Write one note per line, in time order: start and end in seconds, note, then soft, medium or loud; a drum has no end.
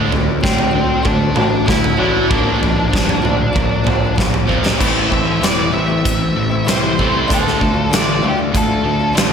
0.00 0.10 D3 medium
0.00 0.11 A3 medium
0.00 0.11 D4 medium
0.09 0.36 D2 medium
0.09 1.65 D3 medium
0.09 0.40 D3 medium
0.09 0.40 A3 medium
0.09 floor tom medium
0.41 0.67 D2 medium
0.41 0.71 D3 medium
0.41 1.33 F#3 medium
0.41 0.71 A3 medium
0.41 1.01 C4 medium
0.41 1.06 C5 medium
0.41 kick loud
0.45 snare medium
0.59 floor tom medium
0.71 0.98 D2 medium
0.71 1.02 D3 medium
0.71 1.02 A3 medium
0.71 2.29 D4 medium
1.03 1.29 D2 loud
1.03 1.33 D3 medium
1.03 2.29 A3 medium
1.03 1.34 A3 medium
1.03 1.64 D4 medium
1.03 1.70 D5 loud
1.03 kick loud
1.03 floor tom medium
1.34 1.60 A1 medium
1.34 1.63 D3 medium
1.34 1.96 F#3 medium
1.34 1.64 A3 medium
1.34 floor tom medium
1.34 mid tom medium
1.66 1.92 D2 loud
1.66 2.27 D3 medium
1.66 1.96 D3 medium
1.66 1.96 A3 medium
1.66 1.96 E4 medium
1.66 1.97 E5 loud
1.66 kick loud
1.66 snare medium
1.66 mid tom medium
1.84 floor tom medium
1.97 2.23 A1 medium
1.97 2.28 D3 medium
1.97 2.29 F#3 medium
1.97 2.28 A3 loud
1.97 2.29 D4 medium
1.97 2.29 E4 medium
1.97 2.29 E5 medium
2.28 2.54 A#1 loud
2.28 2.59 A#2 medium
2.28 2.59 F3 medium
2.28 2.60 A#3 medium
2.28 4.14 D4 medium
2.28 4.13 D5 medium
2.28 kick loud
2.28 floor tom medium
2.60 4.14 A#2 medium
2.60 2.89 A#2 medium
2.60 2.89 F3 medium
2.60 floor tom medium
2.64 2.87 A#1 medium
2.90 3.17 G2 medium
2.90 3.20 A#2 medium
2.90 3.83 F3 medium
2.90 3.21 F3 medium
2.90 kick loud
2.95 snare medium
3.09 floor tom medium
3.21 3.51 A#2 medium
3.21 3.51 F3 medium
3.21 4.79 D4 medium
3.21 mid tom medium
3.25 3.48 D2 medium
3.53 3.79 A#1 medium
3.53 3.82 A#2 medium
3.53 3.82 F3 medium
3.53 4.79 A#3 medium
3.53 kick loud
3.53 floor tom medium
3.83 4.13 A#2 medium
3.83 4.13 F3 medium
3.83 4.46 F3 medium
3.83 floor tom medium
3.83 mid tom medium
3.87 4.11 A#1 medium
4.14 4.44 A#2 medium
4.14 4.78 A#2 medium
4.14 4.44 F3 medium
4.14 kick loud
4.18 4.42 A#1 medium
4.18 snare medium
4.18 mid tom medium
4.34 floor tom medium
4.46 4.73 F2 loud
4.46 4.77 A#2 medium
4.46 4.77 F3 medium
4.46 4.79 F3 medium
4.46 4.77 A#3 medium
4.46 kick medium
4.66 snare medium
4.78 5.08 A1 medium
4.78 5.40 A2 medium
4.78 5.08 A2 medium
4.78 5.08 E3 medium
4.78 5.09 A3 medium
4.78 5.10 C4 medium
4.78 5.10 E4 loud
4.78 kick loud
4.78 crash loud
5.09 5.40 A1 medium
5.09 5.39 A2 medium
5.09 5.40 E3 medium
5.09 5.39 E3 medium
5.09 5.27 A3 medium
5.09 5.25 C4 medium
5.09 5.24 E4 medium
5.09 kick medium
5.14 5.44 E5 medium
5.25 5.42 A3 medium
5.25 5.41 C4 medium
5.25 5.42 E4 medium
5.41 5.71 E1 medium
5.41 6.04 A2 medium
5.41 5.70 A2 medium
5.41 5.70 E3 medium
5.41 5.72 A3 medium
5.41 5.72 C4 medium
5.41 5.73 E4 medium
5.41 snare loud
5.41 closed hi-hat medium
5.45 5.73 D5 medium
5.71 6.03 A1 medium
5.71 6.01 A2 medium
5.71 6.19 E3 medium
5.71 6.01 E3 medium
5.71 5.89 A3 medium
5.71 5.87 C4 medium
5.71 5.86 E4 medium
5.71 6.70 E5 loud
5.87 6.20 A3 medium
5.87 6.19 C4 medium
5.87 6.17 E4 medium
6.05 6.33 A1 medium
6.05 6.33 A2 medium
6.05 6.33 E3 medium
6.05 kick loud
6.05 closed hi-hat medium
6.18 6.51 A3 medium
6.18 6.49 C4 medium
6.18 6.48 E4 medium
6.36 6.64 A1 medium
6.36 6.64 A2 medium
6.36 6.64 E3 medium
6.49 6.66 A3 medium
6.49 6.66 C4 medium
6.49 6.66 E4 medium
6.65 7.23 C2 medium
6.65 7.12 A2 loud
6.65 6.96 A2 medium
6.65 6.95 E3 medium
6.65 6.83 A3 loud
6.65 6.81 C4 loud
6.65 6.80 E4 loud
6.65 closed hi-hat medium
6.69 6.96 E3 medium
6.69 7.27 C5 medium
6.69 snare loud
6.81 6.97 A3 medium
6.81 6.96 C4 medium
6.81 6.98 E4 medium
6.96 7.28 A2 medium
6.96 7.26 E3 medium
6.96 7.15 A3 medium
6.96 7.12 C4 medium
6.96 7.11 E4 medium
6.96 kick medium
7.00 7.28 E3 loud
7.00 7.29 A3 medium
7.12 7.28 A3 medium
7.12 7.27 C4 medium
7.12 7.26 E4 medium
7.27 7.58 D2 medium
7.27 7.58 D3 loud
7.27 7.59 D3 medium
7.27 7.60 A3 loud
7.27 7.59 A3 medium
7.27 7.59 D4 loud
7.27 7.61 F4 loud
7.27 kick loud
7.27 closed hi-hat medium
7.31 7.60 D4 medium
7.31 7.90 A4 medium
7.47 snare soft
7.59 7.89 D2 medium
7.59 7.88 D3 medium
7.59 7.76 A3 medium
7.59 7.88 A3 medium
7.59 7.74 D4 medium
7.59 7.73 F4 medium
7.59 kick medium
7.74 7.90 A3 medium
7.74 7.90 D4 medium
7.74 7.92 F4 medium
7.90 8.19 A1 medium
7.90 8.20 D3 medium
7.90 8.19 D3 medium
7.90 8.22 A3 medium
7.90 8.19 A3 medium
7.90 8.22 D4 loud
7.90 8.24 F4 loud
7.90 closed hi-hat medium
7.94 8.25 D5 medium
7.94 snare loud
8.21 8.51 D2 medium
8.21 8.69 D3 medium
8.21 8.50 D3 medium
8.21 8.50 A3 medium
8.21 8.38 A3 medium
8.21 8.37 D4 medium
8.21 8.37 F4 medium
8.28 8.36 G4 medium
8.37 8.69 A3 medium
8.37 8.69 D4 medium
8.37 8.68 F4 medium
8.52 8.82 D2 medium
8.52 8.81 D3 medium
8.52 8.81 A3 medium
8.52 kick loud
8.52 closed hi-hat medium
8.57 9.13 A4 medium
8.68 9.00 A3 medium
8.68 8.99 D4 medium
8.68 8.99 F4 medium
8.85 9.13 D2 medium
8.85 9.13 D3 medium
8.85 9.13 A3 medium
8.99 9.13 A3 medium
8.99 9.14 D4 medium
8.99 9.16 F4 medium
9.13 9.33 A1 loud
9.13 9.33 D3 medium
9.13 9.30 A3 medium
9.13 9.33 A3 medium
9.13 9.29 D4 loud
9.13 9.29 F4 loud
9.17 snare loud
9.17 closed hi-hat medium
9.29 9.33 F4 medium